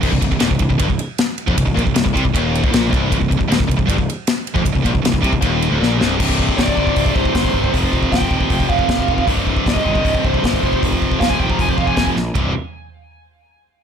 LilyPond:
<<
  \new Staff \with { instrumentName = "Lead electric guitar" } { \time 4/4 \key c \minor \tempo 4 = 156 r1 | r1 | r1 | r1 |
r4 d''4. c''4. | r4 g''4. f''4. | r4 ees''4. c''4. | r4 f''16 aes''16 g''16 bes''16 aes''16 c''16 f''16 aes''16 aes''8 r8 |
r1 | }
  \new Staff \with { instrumentName = "Distorted electric guitar" } { \clef bass \time 4/4 \key c \minor c,16 c,16 c,16 c,16 d,16 c,16 c,16 c,16 g,16 c,16 r4 r16 f,16 | c,16 c,16 bes,16 c,16 c,16 c,16 c16 c,16 ees,8. d,16 bes,8 c,8 | c,16 c,16 c,16 c,16 d,16 c,16 c,16 c,16 g,16 c,16 r4 r16 f,16 | c,16 c,16 bes,16 c,16 c,16 c,16 c16 c,16 ees,8. d,16 bes,8 c,8 |
<c, g, c>4. <c, g, c>4. <c, g, c>4 | <f, c f>4. <f, c f>4. <f, c f>4 | <c, g, c>4. <c, g, c>4. <c, g, c>8 <f, c f>8~ | <f, c f>4 <f, c f>4. <f, c f>4 r8 |
<c, g, c>8 r2. r8 | }
  \new Staff \with { instrumentName = "Distorted electric guitar" } { \clef bass \time 4/4 \key c \minor c,16 c,16 c,16 c,16 d,16 c,16 c,16 c,16 g,16 c,16 r4 r16 f,16 | c,16 c,16 bes,16 c,16 c,16 c,16 c16 c,16 ees,8. d,16 bes,8 c,8 | c,16 c,16 c,16 c,16 d,16 c,16 c,16 c,16 g,16 c,16 r4 r16 f,16 | c,16 c,16 bes,16 c,16 c,16 c,16 c16 c,16 ees,8. d,16 bes,8 c,8 |
<c, g, c>1 | <f, c f>1 | <c, g, c>2.~ <c, g, c>8 <f, c f>8~ | <f, c f>2.~ <f, c f>8 r8 |
<c, g, c>8 r2. r8 | }
  \new Staff \with { instrumentName = "Picked electric bass" } { \clef bass \time 4/4 \key c \minor c,,16 c,,16 c,,16 c,,16 d,,16 c,,16 c,,16 c,,16 g,,16 c,,16 r4 r16 f,,16 | c,,16 c,,16 bes,,16 c,,16 c,,16 c,,16 c,16 c,,16 ees,,8. d,,16 bes,,8 c,,8 | c,,16 c,,16 c,,16 c,,16 d,,16 c,,16 c,,16 c,,16 g,,16 c,,16 r4 r16 f,,16 | c,,16 c,,16 bes,,16 c,,16 c,,16 c,,16 c,16 c,,16 ees,,8. d,,16 bes,,8 c,,8 |
c,,4 c,,8 g,,8 c,,8 c,,8 g,,8 g,,8 | f,,8 f,,8 f,,8 ees,,8 f,,8 f,,8 f,,8 f,,8 | c,,4 c,,8 g,,8 c,,8 c,,8 g,,8 f,,8 | f,,8 f,,8 f,,8 ees,,8 f,,8 f,,8 f,,8 bes,,8 |
c,,8 r2. r8 | }
  \new DrumStaff \with { instrumentName = "Drums" } \drummode { \time 4/4 <cymc bd>16 bd16 <bd cymr>16 bd16 <cymr sn>16 bd16 <bd cymr>16 bd16 <bd cymr>16 bd16 cymr8 <cymr sn>8 cymr16 bd16 | <bd cymr>16 bd16 <bd cymr>16 bd16 <cymr sn>16 bd16 <bd cymr>16 bd16 <bd cymr>8 cymr16 bd16 <cymr sn>8 <bd cymr>8 | <bd cymr>16 bd16 <bd cymr>16 bd16 <cymr sn>16 bd16 <bd cymr>16 bd16 <bd cymr>16 bd16 cymr8 <cymr sn>8 cymr16 bd16 | <bd cymr>16 bd16 <bd cymr>16 bd16 <cymr sn>16 bd16 <bd cymr>16 bd16 <bd cymr>8 cymr8 sn8 sn8 |
<cymc bd>16 bd16 bd16 bd16 <hho bd sn>16 bd16 bd16 bd16 <hho bd>16 bd16 bd16 bd16 <hho bd sn>16 bd16 bd16 bd16 | <hho bd>16 bd16 bd16 bd16 <hho bd sn>16 bd16 bd16 bd16 <hho bd>16 bd16 bd16 bd16 <hho bd sn>16 bd16 bd16 bd16 | <hho bd>16 bd16 bd16 bd16 <hho bd sn>16 bd16 bd16 bd16 <hho bd>16 bd16 bd16 bd16 <hho bd sn>16 bd16 bd16 bd16 | <hho bd>16 bd16 bd16 bd16 <hho bd sn>16 bd16 bd16 bd16 <hho bd>16 bd16 bd16 bd16 <hho bd sn>16 bd16 sn8 |
<bd rb tomfh>4 r4 r4 r4 | }
>>